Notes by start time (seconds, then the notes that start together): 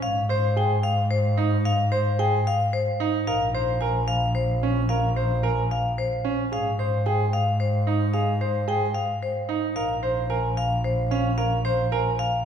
0.02 G#2 F5
0.29 C5
0.56 G#4 G5
0.83 F5
1.11 C5
1.37 D#4
1.65 F5
1.92 C5
2.19 G#4 G5
2.47 F5
2.73 C5
3.00 D#4
3.27 A#1 A#4 F5
3.55 C5
3.81 A#4 G#5
4.08 F5
4.35 C5
4.63 C#4
4.89 A#4 F5
5.16 C5
5.43 A#4 G#5
5.71 F5
5.98 C5
6.25 C#4
6.52 G#2 G#4 F5
6.79 C5
7.06 G#4 G5
7.33 F5
7.60 C5
7.87 D#4
8.13 G#4 F5
8.41 C5
8.68 G#4 G5
8.95 F5
9.23 C5
9.49 D#4
9.76 A#1 A#4 F5
10.03 C5
10.30 A#4 G#5
10.57 F5
10.84 C5
11.11 C#4 F5
11.38 A#4 F5
11.65 C5
11.92 A#4 G#5
12.19 F5